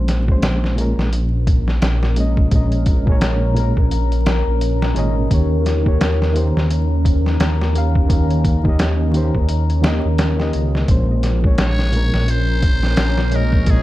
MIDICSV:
0, 0, Header, 1, 6, 480
1, 0, Start_track
1, 0, Tempo, 697674
1, 1731, Time_signature, 4, 2, 24, 8
1, 9512, End_track
2, 0, Start_track
2, 0, Title_t, "Muted trumpet"
2, 0, Program_c, 0, 59
2, 7988, Note_on_c, 0, 73, 121
2, 8466, Note_on_c, 0, 72, 123
2, 8476, Note_off_c, 0, 73, 0
2, 9187, Note_on_c, 0, 70, 102
2, 9197, Note_off_c, 0, 72, 0
2, 9426, Note_on_c, 0, 68, 104
2, 9436, Note_off_c, 0, 70, 0
2, 9512, Note_off_c, 0, 68, 0
2, 9512, End_track
3, 0, Start_track
3, 0, Title_t, "Ambient pad"
3, 0, Program_c, 1, 92
3, 0, Note_on_c, 1, 61, 83
3, 0, Note_on_c, 1, 70, 90
3, 7479, Note_off_c, 1, 70, 0
3, 7483, Note_off_c, 1, 61, 0
3, 7488, Note_on_c, 1, 70, 90
3, 7492, Note_on_c, 1, 61, 88
3, 9512, Note_off_c, 1, 61, 0
3, 9512, Note_off_c, 1, 70, 0
3, 9512, End_track
4, 0, Start_track
4, 0, Title_t, "Reed electric piano"
4, 0, Program_c, 2, 4
4, 0, Note_on_c, 2, 46, 71
4, 0, Note_on_c, 2, 56, 69
4, 0, Note_on_c, 2, 61, 67
4, 0, Note_on_c, 2, 72, 79
4, 154, Note_off_c, 2, 46, 0
4, 160, Note_off_c, 2, 56, 0
4, 165, Note_off_c, 2, 61, 0
4, 170, Note_off_c, 2, 72, 0
4, 189, Note_on_c, 2, 46, 76
4, 198, Note_on_c, 2, 56, 66
4, 209, Note_on_c, 2, 61, 66
4, 219, Note_on_c, 2, 72, 80
4, 506, Note_off_c, 2, 46, 0
4, 510, Note_off_c, 2, 56, 0
4, 516, Note_off_c, 2, 61, 0
4, 520, Note_off_c, 2, 72, 0
4, 523, Note_on_c, 2, 46, 78
4, 537, Note_on_c, 2, 56, 74
4, 549, Note_on_c, 2, 61, 71
4, 556, Note_on_c, 2, 70, 86
4, 742, Note_off_c, 2, 46, 0
4, 749, Note_off_c, 2, 56, 0
4, 755, Note_off_c, 2, 61, 0
4, 758, Note_off_c, 2, 70, 0
4, 1482, Note_on_c, 2, 46, 77
4, 1491, Note_on_c, 2, 56, 70
4, 1501, Note_on_c, 2, 61, 69
4, 1516, Note_on_c, 2, 75, 86
4, 1703, Note_off_c, 2, 46, 0
4, 1707, Note_off_c, 2, 56, 0
4, 1713, Note_off_c, 2, 61, 0
4, 1720, Note_off_c, 2, 75, 0
4, 1728, Note_on_c, 2, 46, 79
4, 1738, Note_on_c, 2, 56, 73
4, 1753, Note_on_c, 2, 61, 74
4, 1758, Note_on_c, 2, 75, 88
4, 2077, Note_off_c, 2, 46, 0
4, 2082, Note_off_c, 2, 56, 0
4, 2089, Note_off_c, 2, 61, 0
4, 2092, Note_off_c, 2, 75, 0
4, 2106, Note_on_c, 2, 46, 93
4, 2119, Note_on_c, 2, 56, 80
4, 2129, Note_on_c, 2, 61, 85
4, 2145, Note_on_c, 2, 73, 90
4, 2424, Note_off_c, 2, 46, 0
4, 2430, Note_off_c, 2, 56, 0
4, 2436, Note_off_c, 2, 61, 0
4, 2441, Note_on_c, 2, 46, 89
4, 2443, Note_off_c, 2, 73, 0
4, 2455, Note_on_c, 2, 56, 77
4, 2462, Note_on_c, 2, 61, 74
4, 2477, Note_on_c, 2, 70, 89
4, 2597, Note_off_c, 2, 46, 0
4, 2603, Note_off_c, 2, 56, 0
4, 2607, Note_off_c, 2, 61, 0
4, 2614, Note_off_c, 2, 70, 0
4, 3399, Note_on_c, 2, 46, 98
4, 3407, Note_on_c, 2, 56, 90
4, 3420, Note_on_c, 2, 61, 97
4, 3433, Note_on_c, 2, 75, 104
4, 3621, Note_off_c, 2, 46, 0
4, 3625, Note_off_c, 2, 56, 0
4, 3632, Note_off_c, 2, 61, 0
4, 3638, Note_off_c, 2, 75, 0
4, 3638, Note_on_c, 2, 51, 74
4, 3651, Note_on_c, 2, 58, 65
4, 3662, Note_on_c, 2, 67, 65
4, 3675, Note_on_c, 2, 73, 76
4, 3992, Note_off_c, 2, 51, 0
4, 3999, Note_off_c, 2, 58, 0
4, 4004, Note_off_c, 2, 67, 0
4, 4010, Note_off_c, 2, 73, 0
4, 4012, Note_on_c, 2, 51, 81
4, 4026, Note_on_c, 2, 58, 70
4, 4035, Note_on_c, 2, 67, 66
4, 4048, Note_on_c, 2, 73, 91
4, 4337, Note_off_c, 2, 51, 0
4, 4344, Note_off_c, 2, 58, 0
4, 4349, Note_off_c, 2, 67, 0
4, 4349, Note_on_c, 2, 51, 78
4, 4355, Note_off_c, 2, 73, 0
4, 4361, Note_on_c, 2, 58, 75
4, 4373, Note_on_c, 2, 67, 76
4, 4382, Note_on_c, 2, 72, 88
4, 4575, Note_off_c, 2, 51, 0
4, 4581, Note_off_c, 2, 58, 0
4, 4587, Note_off_c, 2, 67, 0
4, 4592, Note_off_c, 2, 72, 0
4, 5319, Note_on_c, 2, 51, 73
4, 5331, Note_on_c, 2, 58, 72
4, 5339, Note_on_c, 2, 67, 71
4, 5352, Note_on_c, 2, 77, 88
4, 5541, Note_off_c, 2, 51, 0
4, 5547, Note_off_c, 2, 58, 0
4, 5551, Note_off_c, 2, 67, 0
4, 5557, Note_on_c, 2, 51, 78
4, 5558, Note_off_c, 2, 77, 0
4, 5566, Note_on_c, 2, 58, 75
4, 5579, Note_on_c, 2, 67, 69
4, 5593, Note_on_c, 2, 77, 81
4, 5911, Note_off_c, 2, 51, 0
4, 5916, Note_off_c, 2, 58, 0
4, 5922, Note_off_c, 2, 67, 0
4, 5929, Note_off_c, 2, 77, 0
4, 5943, Note_on_c, 2, 51, 88
4, 5955, Note_on_c, 2, 58, 81
4, 5967, Note_on_c, 2, 67, 74
4, 5980, Note_on_c, 2, 75, 99
4, 6262, Note_off_c, 2, 51, 0
4, 6269, Note_off_c, 2, 58, 0
4, 6272, Note_on_c, 2, 51, 79
4, 6274, Note_off_c, 2, 67, 0
4, 6281, Note_off_c, 2, 75, 0
4, 6285, Note_on_c, 2, 58, 74
4, 6294, Note_on_c, 2, 67, 79
4, 6307, Note_on_c, 2, 72, 91
4, 6432, Note_off_c, 2, 51, 0
4, 6438, Note_off_c, 2, 58, 0
4, 6443, Note_off_c, 2, 67, 0
4, 6449, Note_off_c, 2, 72, 0
4, 6751, Note_on_c, 2, 51, 91
4, 6761, Note_on_c, 2, 58, 90
4, 6774, Note_on_c, 2, 67, 82
4, 6785, Note_on_c, 2, 75, 105
4, 6911, Note_off_c, 2, 51, 0
4, 6916, Note_off_c, 2, 58, 0
4, 6923, Note_off_c, 2, 67, 0
4, 6928, Note_off_c, 2, 75, 0
4, 7133, Note_on_c, 2, 51, 90
4, 7143, Note_on_c, 2, 58, 82
4, 7152, Note_on_c, 2, 67, 77
4, 7163, Note_on_c, 2, 75, 99
4, 7457, Note_off_c, 2, 51, 0
4, 7463, Note_off_c, 2, 58, 0
4, 7467, Note_off_c, 2, 67, 0
4, 7469, Note_on_c, 2, 46, 78
4, 7473, Note_off_c, 2, 75, 0
4, 7482, Note_on_c, 2, 56, 62
4, 7493, Note_on_c, 2, 61, 67
4, 7506, Note_on_c, 2, 72, 77
4, 7828, Note_off_c, 2, 46, 0
4, 7834, Note_off_c, 2, 56, 0
4, 7839, Note_off_c, 2, 61, 0
4, 7846, Note_off_c, 2, 72, 0
4, 7856, Note_on_c, 2, 46, 80
4, 7869, Note_on_c, 2, 56, 68
4, 7880, Note_on_c, 2, 61, 72
4, 7893, Note_on_c, 2, 73, 86
4, 8179, Note_off_c, 2, 46, 0
4, 8185, Note_off_c, 2, 56, 0
4, 8191, Note_off_c, 2, 61, 0
4, 8198, Note_off_c, 2, 73, 0
4, 8204, Note_on_c, 2, 46, 81
4, 8213, Note_on_c, 2, 56, 68
4, 8223, Note_on_c, 2, 61, 72
4, 8232, Note_on_c, 2, 70, 90
4, 8422, Note_off_c, 2, 46, 0
4, 8427, Note_off_c, 2, 56, 0
4, 8432, Note_off_c, 2, 61, 0
4, 8436, Note_off_c, 2, 70, 0
4, 9154, Note_on_c, 2, 46, 77
4, 9164, Note_on_c, 2, 56, 72
4, 9177, Note_on_c, 2, 61, 68
4, 9188, Note_on_c, 2, 75, 84
4, 9379, Note_off_c, 2, 46, 0
4, 9384, Note_off_c, 2, 56, 0
4, 9390, Note_off_c, 2, 61, 0
4, 9396, Note_off_c, 2, 75, 0
4, 9396, Note_on_c, 2, 46, 81
4, 9408, Note_on_c, 2, 56, 73
4, 9418, Note_on_c, 2, 61, 70
4, 9430, Note_on_c, 2, 75, 89
4, 9512, Note_off_c, 2, 46, 0
4, 9512, Note_off_c, 2, 56, 0
4, 9512, Note_off_c, 2, 61, 0
4, 9512, Note_off_c, 2, 75, 0
4, 9512, End_track
5, 0, Start_track
5, 0, Title_t, "Detuned saw bass"
5, 0, Program_c, 3, 39
5, 0, Note_on_c, 3, 34, 95
5, 647, Note_off_c, 3, 34, 0
5, 670, Note_on_c, 3, 34, 101
5, 1231, Note_off_c, 3, 34, 0
5, 1248, Note_on_c, 3, 34, 98
5, 1711, Note_off_c, 3, 34, 0
5, 1732, Note_on_c, 3, 34, 102
5, 2566, Note_off_c, 3, 34, 0
5, 2592, Note_on_c, 3, 34, 103
5, 3045, Note_off_c, 3, 34, 0
5, 3075, Note_on_c, 3, 34, 88
5, 3393, Note_off_c, 3, 34, 0
5, 3409, Note_on_c, 3, 32, 88
5, 3626, Note_off_c, 3, 32, 0
5, 3653, Note_on_c, 3, 39, 98
5, 4486, Note_off_c, 3, 39, 0
5, 4514, Note_on_c, 3, 39, 101
5, 5073, Note_off_c, 3, 39, 0
5, 5089, Note_on_c, 3, 39, 96
5, 5551, Note_off_c, 3, 39, 0
5, 5569, Note_on_c, 3, 39, 100
5, 6404, Note_off_c, 3, 39, 0
5, 6431, Note_on_c, 3, 39, 100
5, 6884, Note_off_c, 3, 39, 0
5, 6914, Note_on_c, 3, 39, 88
5, 7233, Note_off_c, 3, 39, 0
5, 7255, Note_on_c, 3, 37, 83
5, 7469, Note_off_c, 3, 37, 0
5, 7491, Note_on_c, 3, 34, 106
5, 8325, Note_off_c, 3, 34, 0
5, 8352, Note_on_c, 3, 34, 108
5, 8912, Note_off_c, 3, 34, 0
5, 8927, Note_on_c, 3, 34, 100
5, 9390, Note_off_c, 3, 34, 0
5, 9403, Note_on_c, 3, 34, 100
5, 9512, Note_off_c, 3, 34, 0
5, 9512, End_track
6, 0, Start_track
6, 0, Title_t, "Drums"
6, 56, Note_on_c, 9, 42, 71
6, 60, Note_on_c, 9, 38, 46
6, 125, Note_off_c, 9, 42, 0
6, 128, Note_off_c, 9, 38, 0
6, 194, Note_on_c, 9, 36, 94
6, 263, Note_off_c, 9, 36, 0
6, 292, Note_on_c, 9, 42, 83
6, 295, Note_on_c, 9, 38, 113
6, 361, Note_off_c, 9, 42, 0
6, 364, Note_off_c, 9, 38, 0
6, 440, Note_on_c, 9, 38, 38
6, 509, Note_off_c, 9, 38, 0
6, 537, Note_on_c, 9, 42, 68
6, 606, Note_off_c, 9, 42, 0
6, 682, Note_on_c, 9, 38, 42
6, 750, Note_off_c, 9, 38, 0
6, 775, Note_on_c, 9, 42, 82
6, 844, Note_off_c, 9, 42, 0
6, 1012, Note_on_c, 9, 36, 101
6, 1013, Note_on_c, 9, 42, 68
6, 1081, Note_off_c, 9, 36, 0
6, 1082, Note_off_c, 9, 42, 0
6, 1154, Note_on_c, 9, 38, 37
6, 1223, Note_off_c, 9, 38, 0
6, 1251, Note_on_c, 9, 42, 87
6, 1255, Note_on_c, 9, 38, 106
6, 1320, Note_off_c, 9, 42, 0
6, 1324, Note_off_c, 9, 38, 0
6, 1395, Note_on_c, 9, 38, 52
6, 1464, Note_off_c, 9, 38, 0
6, 1488, Note_on_c, 9, 42, 74
6, 1557, Note_off_c, 9, 42, 0
6, 1632, Note_on_c, 9, 36, 84
6, 1701, Note_off_c, 9, 36, 0
6, 1729, Note_on_c, 9, 42, 86
6, 1731, Note_on_c, 9, 36, 114
6, 1798, Note_off_c, 9, 42, 0
6, 1800, Note_off_c, 9, 36, 0
6, 1870, Note_on_c, 9, 42, 45
6, 1939, Note_off_c, 9, 42, 0
6, 1967, Note_on_c, 9, 42, 67
6, 1970, Note_on_c, 9, 36, 95
6, 2035, Note_off_c, 9, 42, 0
6, 2039, Note_off_c, 9, 36, 0
6, 2112, Note_on_c, 9, 36, 93
6, 2181, Note_off_c, 9, 36, 0
6, 2210, Note_on_c, 9, 42, 84
6, 2213, Note_on_c, 9, 38, 115
6, 2279, Note_off_c, 9, 42, 0
6, 2282, Note_off_c, 9, 38, 0
6, 2453, Note_on_c, 9, 42, 67
6, 2522, Note_off_c, 9, 42, 0
6, 2593, Note_on_c, 9, 36, 93
6, 2662, Note_off_c, 9, 36, 0
6, 2692, Note_on_c, 9, 42, 80
6, 2761, Note_off_c, 9, 42, 0
6, 2834, Note_on_c, 9, 42, 46
6, 2903, Note_off_c, 9, 42, 0
6, 2931, Note_on_c, 9, 42, 67
6, 2935, Note_on_c, 9, 38, 116
6, 3000, Note_off_c, 9, 42, 0
6, 3003, Note_off_c, 9, 38, 0
6, 3173, Note_on_c, 9, 42, 81
6, 3242, Note_off_c, 9, 42, 0
6, 3318, Note_on_c, 9, 38, 58
6, 3387, Note_off_c, 9, 38, 0
6, 3413, Note_on_c, 9, 42, 69
6, 3481, Note_off_c, 9, 42, 0
6, 3652, Note_on_c, 9, 36, 107
6, 3653, Note_on_c, 9, 42, 83
6, 3720, Note_off_c, 9, 36, 0
6, 3722, Note_off_c, 9, 42, 0
6, 3894, Note_on_c, 9, 42, 71
6, 3897, Note_on_c, 9, 38, 45
6, 3963, Note_off_c, 9, 42, 0
6, 3966, Note_off_c, 9, 38, 0
6, 4033, Note_on_c, 9, 36, 92
6, 4102, Note_off_c, 9, 36, 0
6, 4133, Note_on_c, 9, 42, 88
6, 4137, Note_on_c, 9, 38, 119
6, 4202, Note_off_c, 9, 42, 0
6, 4205, Note_off_c, 9, 38, 0
6, 4279, Note_on_c, 9, 38, 40
6, 4348, Note_off_c, 9, 38, 0
6, 4374, Note_on_c, 9, 42, 68
6, 4442, Note_off_c, 9, 42, 0
6, 4520, Note_on_c, 9, 38, 40
6, 4589, Note_off_c, 9, 38, 0
6, 4613, Note_on_c, 9, 42, 84
6, 4682, Note_off_c, 9, 42, 0
6, 4852, Note_on_c, 9, 36, 98
6, 4855, Note_on_c, 9, 42, 71
6, 4920, Note_off_c, 9, 36, 0
6, 4924, Note_off_c, 9, 42, 0
6, 4997, Note_on_c, 9, 38, 36
6, 5066, Note_off_c, 9, 38, 0
6, 5092, Note_on_c, 9, 42, 81
6, 5095, Note_on_c, 9, 38, 114
6, 5161, Note_off_c, 9, 42, 0
6, 5164, Note_off_c, 9, 38, 0
6, 5239, Note_on_c, 9, 38, 52
6, 5308, Note_off_c, 9, 38, 0
6, 5335, Note_on_c, 9, 42, 74
6, 5403, Note_off_c, 9, 42, 0
6, 5472, Note_on_c, 9, 36, 97
6, 5541, Note_off_c, 9, 36, 0
6, 5570, Note_on_c, 9, 36, 112
6, 5572, Note_on_c, 9, 42, 96
6, 5639, Note_off_c, 9, 36, 0
6, 5641, Note_off_c, 9, 42, 0
6, 5713, Note_on_c, 9, 42, 43
6, 5782, Note_off_c, 9, 42, 0
6, 5810, Note_on_c, 9, 36, 101
6, 5811, Note_on_c, 9, 42, 72
6, 5878, Note_off_c, 9, 36, 0
6, 5880, Note_off_c, 9, 42, 0
6, 5951, Note_on_c, 9, 36, 96
6, 6019, Note_off_c, 9, 36, 0
6, 6049, Note_on_c, 9, 42, 85
6, 6052, Note_on_c, 9, 38, 115
6, 6118, Note_off_c, 9, 42, 0
6, 6121, Note_off_c, 9, 38, 0
6, 6290, Note_on_c, 9, 42, 66
6, 6359, Note_off_c, 9, 42, 0
6, 6430, Note_on_c, 9, 36, 86
6, 6499, Note_off_c, 9, 36, 0
6, 6526, Note_on_c, 9, 42, 83
6, 6595, Note_off_c, 9, 42, 0
6, 6672, Note_on_c, 9, 42, 47
6, 6740, Note_off_c, 9, 42, 0
6, 6767, Note_on_c, 9, 42, 74
6, 6770, Note_on_c, 9, 38, 126
6, 6836, Note_off_c, 9, 42, 0
6, 6839, Note_off_c, 9, 38, 0
6, 7007, Note_on_c, 9, 42, 81
6, 7010, Note_on_c, 9, 38, 103
6, 7075, Note_off_c, 9, 42, 0
6, 7079, Note_off_c, 9, 38, 0
6, 7153, Note_on_c, 9, 38, 37
6, 7221, Note_off_c, 9, 38, 0
6, 7247, Note_on_c, 9, 42, 62
6, 7316, Note_off_c, 9, 42, 0
6, 7396, Note_on_c, 9, 38, 36
6, 7465, Note_off_c, 9, 38, 0
6, 7487, Note_on_c, 9, 42, 86
6, 7488, Note_on_c, 9, 36, 112
6, 7556, Note_off_c, 9, 42, 0
6, 7557, Note_off_c, 9, 36, 0
6, 7727, Note_on_c, 9, 42, 70
6, 7730, Note_on_c, 9, 38, 44
6, 7796, Note_off_c, 9, 42, 0
6, 7799, Note_off_c, 9, 38, 0
6, 7870, Note_on_c, 9, 36, 98
6, 7939, Note_off_c, 9, 36, 0
6, 7966, Note_on_c, 9, 42, 85
6, 7970, Note_on_c, 9, 38, 123
6, 8035, Note_off_c, 9, 42, 0
6, 8038, Note_off_c, 9, 38, 0
6, 8111, Note_on_c, 9, 38, 39
6, 8180, Note_off_c, 9, 38, 0
6, 8206, Note_on_c, 9, 42, 67
6, 8274, Note_off_c, 9, 42, 0
6, 8351, Note_on_c, 9, 38, 43
6, 8420, Note_off_c, 9, 38, 0
6, 8450, Note_on_c, 9, 42, 84
6, 8519, Note_off_c, 9, 42, 0
6, 8685, Note_on_c, 9, 42, 71
6, 8687, Note_on_c, 9, 36, 95
6, 8754, Note_off_c, 9, 42, 0
6, 8756, Note_off_c, 9, 36, 0
6, 8829, Note_on_c, 9, 38, 37
6, 8898, Note_off_c, 9, 38, 0
6, 8922, Note_on_c, 9, 42, 85
6, 8926, Note_on_c, 9, 38, 119
6, 8991, Note_off_c, 9, 42, 0
6, 8994, Note_off_c, 9, 38, 0
6, 9065, Note_on_c, 9, 38, 51
6, 9134, Note_off_c, 9, 38, 0
6, 9162, Note_on_c, 9, 42, 69
6, 9231, Note_off_c, 9, 42, 0
6, 9307, Note_on_c, 9, 36, 92
6, 9375, Note_off_c, 9, 36, 0
6, 9401, Note_on_c, 9, 42, 88
6, 9405, Note_on_c, 9, 36, 118
6, 9470, Note_off_c, 9, 42, 0
6, 9474, Note_off_c, 9, 36, 0
6, 9512, End_track
0, 0, End_of_file